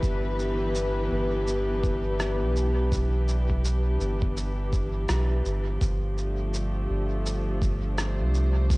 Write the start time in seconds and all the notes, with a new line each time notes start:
Already playing: E3 B3 D4 G4 B4
0.03 G1, kick, shaker
0.39 shaker
0.75 shaker
1.11 G1
1.47 shaker
1.84 kick, shaker
2.20 cross-stick, shaker
2.41 B1
2.56 shaker
2.92 kick, shaker
3.28 shaker
3.50 kick
3.65 shaker
4.00 G1, shaker
4.22 kick
4.37 shaker
4.73 kick, shaker
5.09 B1, cross-stick, shaker
5.45 G1, shaker
5.81 G1 F3, kick, shaker
5.97 D4
6.13 A3
6.18 shaker
6.54 shaker
6.90 G1
7.26 shaker
7.62 kick, shaker
7.93 C5
7.98 cross-stick, shaker
8.20 C2
8.34 shaker
8.70 kick, shaker